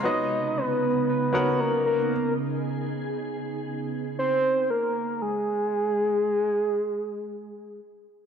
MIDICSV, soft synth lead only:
0, 0, Header, 1, 2, 480
1, 0, Start_track
1, 0, Tempo, 500000
1, 7931, End_track
2, 0, Start_track
2, 0, Title_t, "Soft synth lead"
2, 0, Program_c, 0, 80
2, 48, Note_on_c, 0, 75, 108
2, 549, Note_on_c, 0, 71, 97
2, 564, Note_off_c, 0, 75, 0
2, 1038, Note_off_c, 0, 71, 0
2, 1046, Note_on_c, 0, 71, 96
2, 1539, Note_on_c, 0, 70, 89
2, 1553, Note_off_c, 0, 71, 0
2, 1781, Note_off_c, 0, 70, 0
2, 1788, Note_on_c, 0, 70, 85
2, 2243, Note_off_c, 0, 70, 0
2, 4020, Note_on_c, 0, 72, 111
2, 4514, Note_on_c, 0, 70, 99
2, 4529, Note_off_c, 0, 72, 0
2, 5009, Note_on_c, 0, 68, 94
2, 5023, Note_off_c, 0, 70, 0
2, 7488, Note_off_c, 0, 68, 0
2, 7931, End_track
0, 0, End_of_file